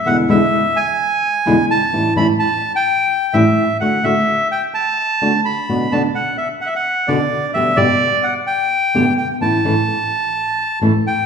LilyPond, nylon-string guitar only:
\new Staff \with { instrumentName = "Nylon-string guitar" } { \clef bass \time 4/4 \key a \mixolydian \tempo 4 = 128 <e, b, d gis b e'>8 <e, b, d gis b e'>8 r2 <e, b, d gis b e'>8 r8 | <a, e g cis' e'>8 <a, e g cis' e'>8 r2 <a, e g cis' e'>8 r8 | <d a d' fis'>8 <d a d' fis'>8 r2 <d a d' fis'>8 r8 | <b, d b d' fis'>8 <b, d b d' fis'>8 r2 <b, d b d' fis'>8 r8 |
<g, b, d g b g'>8 <g, b, d g b g'>8 r2 <g, b, d g b g'>8 r8 | <a, e a cis' e'>8 <a, e a cis' e'>8 r2 <a, e a cis' e'>8 r8 | }